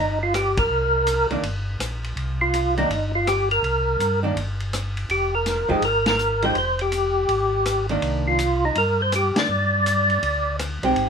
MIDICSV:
0, 0, Header, 1, 5, 480
1, 0, Start_track
1, 0, Key_signature, -3, "minor"
1, 0, Tempo, 366300
1, 917, Time_signature, 4, 2, 24, 8
1, 14534, End_track
2, 0, Start_track
2, 0, Title_t, "Tonewheel organ"
2, 0, Program_c, 0, 16
2, 0, Note_on_c, 0, 63, 75
2, 246, Note_off_c, 0, 63, 0
2, 301, Note_on_c, 0, 65, 73
2, 442, Note_off_c, 0, 65, 0
2, 457, Note_on_c, 0, 67, 82
2, 767, Note_off_c, 0, 67, 0
2, 769, Note_on_c, 0, 70, 104
2, 1666, Note_off_c, 0, 70, 0
2, 3163, Note_on_c, 0, 65, 71
2, 3602, Note_off_c, 0, 65, 0
2, 3650, Note_on_c, 0, 63, 76
2, 4086, Note_off_c, 0, 63, 0
2, 4130, Note_on_c, 0, 65, 76
2, 4291, Note_on_c, 0, 67, 90
2, 4292, Note_off_c, 0, 65, 0
2, 4573, Note_off_c, 0, 67, 0
2, 4606, Note_on_c, 0, 70, 89
2, 5504, Note_off_c, 0, 70, 0
2, 6697, Note_on_c, 0, 67, 71
2, 7006, Note_off_c, 0, 67, 0
2, 7008, Note_on_c, 0, 70, 80
2, 7483, Note_on_c, 0, 68, 67
2, 7491, Note_off_c, 0, 70, 0
2, 7648, Note_off_c, 0, 68, 0
2, 7664, Note_on_c, 0, 70, 89
2, 7940, Note_off_c, 0, 70, 0
2, 7962, Note_on_c, 0, 70, 82
2, 8448, Note_off_c, 0, 70, 0
2, 8450, Note_on_c, 0, 72, 97
2, 8610, Note_off_c, 0, 72, 0
2, 8625, Note_on_c, 0, 72, 89
2, 8928, Note_on_c, 0, 67, 82
2, 8931, Note_off_c, 0, 72, 0
2, 10305, Note_off_c, 0, 67, 0
2, 10845, Note_on_c, 0, 65, 75
2, 11331, Note_off_c, 0, 65, 0
2, 11338, Note_on_c, 0, 63, 78
2, 11496, Note_off_c, 0, 63, 0
2, 11504, Note_on_c, 0, 70, 94
2, 11811, Note_off_c, 0, 70, 0
2, 11821, Note_on_c, 0, 72, 81
2, 11978, Note_off_c, 0, 72, 0
2, 11998, Note_on_c, 0, 67, 87
2, 12298, Note_off_c, 0, 67, 0
2, 12301, Note_on_c, 0, 74, 85
2, 13843, Note_off_c, 0, 74, 0
2, 14534, End_track
3, 0, Start_track
3, 0, Title_t, "Hollow-body jazz guitar"
3, 0, Program_c, 1, 26
3, 1711, Note_on_c, 1, 51, 54
3, 1716, Note_on_c, 1, 58, 60
3, 1726, Note_on_c, 1, 62, 65
3, 1861, Note_off_c, 1, 51, 0
3, 1864, Note_off_c, 1, 58, 0
3, 1869, Note_off_c, 1, 62, 0
3, 3637, Note_on_c, 1, 51, 59
3, 3646, Note_on_c, 1, 58, 66
3, 3653, Note_on_c, 1, 62, 71
3, 3784, Note_off_c, 1, 51, 0
3, 3789, Note_off_c, 1, 58, 0
3, 3792, Note_off_c, 1, 62, 0
3, 5542, Note_on_c, 1, 51, 51
3, 5555, Note_on_c, 1, 58, 57
3, 5558, Note_on_c, 1, 62, 58
3, 5696, Note_off_c, 1, 51, 0
3, 5703, Note_off_c, 1, 58, 0
3, 5704, Note_off_c, 1, 62, 0
3, 7452, Note_on_c, 1, 53, 63
3, 7457, Note_on_c, 1, 56, 60
3, 7465, Note_on_c, 1, 63, 63
3, 7469, Note_on_c, 1, 67, 62
3, 7611, Note_off_c, 1, 53, 0
3, 7614, Note_off_c, 1, 56, 0
3, 7618, Note_off_c, 1, 63, 0
3, 7619, Note_off_c, 1, 67, 0
3, 8422, Note_on_c, 1, 53, 53
3, 8426, Note_on_c, 1, 56, 60
3, 8432, Note_on_c, 1, 63, 55
3, 8438, Note_on_c, 1, 67, 56
3, 8576, Note_off_c, 1, 53, 0
3, 8578, Note_off_c, 1, 56, 0
3, 8581, Note_off_c, 1, 63, 0
3, 8584, Note_off_c, 1, 67, 0
3, 10349, Note_on_c, 1, 51, 57
3, 10358, Note_on_c, 1, 58, 63
3, 10363, Note_on_c, 1, 62, 68
3, 10963, Note_off_c, 1, 51, 0
3, 10968, Note_off_c, 1, 58, 0
3, 10971, Note_off_c, 1, 62, 0
3, 14196, Note_on_c, 1, 56, 50
3, 14200, Note_on_c, 1, 60, 57
3, 14203, Note_on_c, 1, 63, 52
3, 14210, Note_on_c, 1, 67, 61
3, 14534, Note_off_c, 1, 56, 0
3, 14534, Note_off_c, 1, 60, 0
3, 14534, Note_off_c, 1, 63, 0
3, 14534, Note_off_c, 1, 67, 0
3, 14534, End_track
4, 0, Start_track
4, 0, Title_t, "Tonewheel organ"
4, 0, Program_c, 2, 16
4, 0, Note_on_c, 2, 31, 69
4, 865, Note_off_c, 2, 31, 0
4, 913, Note_on_c, 2, 36, 78
4, 1654, Note_off_c, 2, 36, 0
4, 1709, Note_on_c, 2, 36, 35
4, 1793, Note_off_c, 2, 36, 0
4, 1872, Note_on_c, 2, 31, 75
4, 2320, Note_off_c, 2, 31, 0
4, 2353, Note_on_c, 2, 34, 70
4, 2801, Note_off_c, 2, 34, 0
4, 2830, Note_on_c, 2, 36, 77
4, 3745, Note_off_c, 2, 36, 0
4, 3797, Note_on_c, 2, 31, 75
4, 4709, Note_off_c, 2, 31, 0
4, 4751, Note_on_c, 2, 36, 77
4, 5200, Note_off_c, 2, 36, 0
4, 5231, Note_on_c, 2, 43, 75
4, 5679, Note_off_c, 2, 43, 0
4, 5711, Note_on_c, 2, 31, 71
4, 6625, Note_off_c, 2, 31, 0
4, 6670, Note_on_c, 2, 29, 80
4, 7411, Note_off_c, 2, 29, 0
4, 7460, Note_on_c, 2, 29, 34
4, 7546, Note_off_c, 2, 29, 0
4, 7622, Note_on_c, 2, 32, 76
4, 8540, Note_off_c, 2, 32, 0
4, 8588, Note_on_c, 2, 29, 77
4, 9504, Note_off_c, 2, 29, 0
4, 9547, Note_on_c, 2, 32, 76
4, 10464, Note_off_c, 2, 32, 0
4, 10505, Note_on_c, 2, 36, 83
4, 11423, Note_off_c, 2, 36, 0
4, 11471, Note_on_c, 2, 43, 68
4, 12213, Note_off_c, 2, 43, 0
4, 12257, Note_on_c, 2, 50, 64
4, 12420, Note_off_c, 2, 50, 0
4, 12434, Note_on_c, 2, 43, 78
4, 13348, Note_off_c, 2, 43, 0
4, 13402, Note_on_c, 2, 38, 77
4, 14139, Note_off_c, 2, 38, 0
4, 14188, Note_on_c, 2, 35, 66
4, 14346, Note_off_c, 2, 35, 0
4, 14360, Note_on_c, 2, 32, 76
4, 14534, Note_off_c, 2, 32, 0
4, 14534, End_track
5, 0, Start_track
5, 0, Title_t, "Drums"
5, 446, Note_on_c, 9, 44, 45
5, 446, Note_on_c, 9, 51, 58
5, 447, Note_on_c, 9, 37, 59
5, 577, Note_off_c, 9, 44, 0
5, 577, Note_off_c, 9, 51, 0
5, 578, Note_off_c, 9, 37, 0
5, 750, Note_on_c, 9, 51, 68
5, 754, Note_on_c, 9, 36, 73
5, 881, Note_off_c, 9, 51, 0
5, 885, Note_off_c, 9, 36, 0
5, 1397, Note_on_c, 9, 44, 51
5, 1397, Note_on_c, 9, 51, 63
5, 1528, Note_off_c, 9, 44, 0
5, 1528, Note_off_c, 9, 51, 0
5, 1709, Note_on_c, 9, 51, 37
5, 1840, Note_off_c, 9, 51, 0
5, 1879, Note_on_c, 9, 51, 57
5, 2010, Note_off_c, 9, 51, 0
5, 2360, Note_on_c, 9, 44, 61
5, 2360, Note_on_c, 9, 51, 59
5, 2361, Note_on_c, 9, 37, 62
5, 2491, Note_off_c, 9, 44, 0
5, 2491, Note_off_c, 9, 51, 0
5, 2492, Note_off_c, 9, 37, 0
5, 2678, Note_on_c, 9, 51, 41
5, 2809, Note_off_c, 9, 51, 0
5, 2841, Note_on_c, 9, 51, 45
5, 2972, Note_off_c, 9, 51, 0
5, 3322, Note_on_c, 9, 44, 54
5, 3322, Note_on_c, 9, 51, 58
5, 3453, Note_off_c, 9, 44, 0
5, 3453, Note_off_c, 9, 51, 0
5, 3635, Note_on_c, 9, 51, 38
5, 3766, Note_off_c, 9, 51, 0
5, 3807, Note_on_c, 9, 51, 53
5, 3938, Note_off_c, 9, 51, 0
5, 4287, Note_on_c, 9, 44, 56
5, 4287, Note_on_c, 9, 51, 60
5, 4288, Note_on_c, 9, 37, 61
5, 4418, Note_off_c, 9, 44, 0
5, 4418, Note_off_c, 9, 51, 0
5, 4419, Note_off_c, 9, 37, 0
5, 4599, Note_on_c, 9, 51, 38
5, 4730, Note_off_c, 9, 51, 0
5, 4769, Note_on_c, 9, 51, 44
5, 4900, Note_off_c, 9, 51, 0
5, 5244, Note_on_c, 9, 44, 49
5, 5244, Note_on_c, 9, 51, 54
5, 5375, Note_off_c, 9, 44, 0
5, 5375, Note_off_c, 9, 51, 0
5, 5723, Note_on_c, 9, 51, 53
5, 5854, Note_off_c, 9, 51, 0
5, 6031, Note_on_c, 9, 51, 40
5, 6162, Note_off_c, 9, 51, 0
5, 6200, Note_on_c, 9, 44, 56
5, 6200, Note_on_c, 9, 51, 57
5, 6201, Note_on_c, 9, 37, 60
5, 6331, Note_off_c, 9, 44, 0
5, 6331, Note_off_c, 9, 51, 0
5, 6332, Note_off_c, 9, 37, 0
5, 6511, Note_on_c, 9, 51, 44
5, 6642, Note_off_c, 9, 51, 0
5, 6676, Note_on_c, 9, 51, 48
5, 6807, Note_off_c, 9, 51, 0
5, 7152, Note_on_c, 9, 44, 49
5, 7152, Note_on_c, 9, 51, 61
5, 7153, Note_on_c, 9, 38, 34
5, 7283, Note_off_c, 9, 44, 0
5, 7283, Note_off_c, 9, 51, 0
5, 7284, Note_off_c, 9, 38, 0
5, 7464, Note_on_c, 9, 36, 42
5, 7595, Note_off_c, 9, 36, 0
5, 7629, Note_on_c, 9, 51, 58
5, 7760, Note_off_c, 9, 51, 0
5, 7939, Note_on_c, 9, 51, 56
5, 7941, Note_on_c, 9, 38, 65
5, 8070, Note_off_c, 9, 51, 0
5, 8072, Note_off_c, 9, 38, 0
5, 8106, Note_on_c, 9, 44, 49
5, 8237, Note_off_c, 9, 44, 0
5, 8417, Note_on_c, 9, 51, 42
5, 8548, Note_off_c, 9, 51, 0
5, 8584, Note_on_c, 9, 51, 45
5, 8715, Note_off_c, 9, 51, 0
5, 8897, Note_on_c, 9, 51, 42
5, 9028, Note_off_c, 9, 51, 0
5, 9065, Note_on_c, 9, 44, 46
5, 9065, Note_on_c, 9, 51, 60
5, 9196, Note_off_c, 9, 44, 0
5, 9196, Note_off_c, 9, 51, 0
5, 9548, Note_on_c, 9, 51, 49
5, 9679, Note_off_c, 9, 51, 0
5, 10031, Note_on_c, 9, 44, 60
5, 10031, Note_on_c, 9, 51, 57
5, 10033, Note_on_c, 9, 37, 61
5, 10162, Note_off_c, 9, 44, 0
5, 10162, Note_off_c, 9, 51, 0
5, 10164, Note_off_c, 9, 37, 0
5, 10341, Note_on_c, 9, 51, 41
5, 10472, Note_off_c, 9, 51, 0
5, 10510, Note_on_c, 9, 51, 52
5, 10641, Note_off_c, 9, 51, 0
5, 10989, Note_on_c, 9, 44, 58
5, 10989, Note_on_c, 9, 51, 60
5, 11120, Note_off_c, 9, 44, 0
5, 11120, Note_off_c, 9, 51, 0
5, 11471, Note_on_c, 9, 51, 54
5, 11602, Note_off_c, 9, 51, 0
5, 11952, Note_on_c, 9, 44, 58
5, 11952, Note_on_c, 9, 51, 60
5, 11954, Note_on_c, 9, 37, 58
5, 12083, Note_off_c, 9, 44, 0
5, 12083, Note_off_c, 9, 51, 0
5, 12085, Note_off_c, 9, 37, 0
5, 12264, Note_on_c, 9, 51, 63
5, 12266, Note_on_c, 9, 38, 74
5, 12395, Note_off_c, 9, 51, 0
5, 12397, Note_off_c, 9, 38, 0
5, 12921, Note_on_c, 9, 44, 56
5, 12921, Note_on_c, 9, 51, 60
5, 13052, Note_off_c, 9, 44, 0
5, 13052, Note_off_c, 9, 51, 0
5, 13230, Note_on_c, 9, 51, 36
5, 13362, Note_off_c, 9, 51, 0
5, 13401, Note_on_c, 9, 51, 52
5, 13532, Note_off_c, 9, 51, 0
5, 13880, Note_on_c, 9, 44, 50
5, 13880, Note_on_c, 9, 51, 65
5, 13881, Note_on_c, 9, 37, 60
5, 14011, Note_off_c, 9, 44, 0
5, 14011, Note_off_c, 9, 51, 0
5, 14013, Note_off_c, 9, 37, 0
5, 14191, Note_on_c, 9, 51, 43
5, 14322, Note_off_c, 9, 51, 0
5, 14361, Note_on_c, 9, 51, 47
5, 14492, Note_off_c, 9, 51, 0
5, 14534, End_track
0, 0, End_of_file